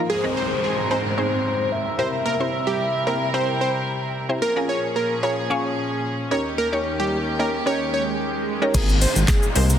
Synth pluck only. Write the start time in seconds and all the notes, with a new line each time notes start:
0.24 C4 D#4 G#4 A#4
0.90 C4 D#4 G#4 A#4
1.17 C4 D#4 G#4 C5
1.98 C4 E4 G4 A#4
2.40 C4 E4 G4 C5
3.07 C4 E4 G4 A#4
3.34 C4 E4 G4 A#4
4.29 C4 E4 G4 C5
4.56 C#4 F4 G#4 A#4
5.23 C#4 F4 G#4 A#4
5.50 C#4 F4 G#4 C#5
6.31 C#4 D#4 G4 A#4
6.72 C#4 D#4 G4 C#5
7.39 C#4 D#4 G4 A#4
7.66 C#4 D#4 G4 A#4
8.62 C#4 D#4 G4 A#4
8.74 A#3 C4 D#4 G#4 A#4
9.56 A#3 C4 D#4 G#4 A#4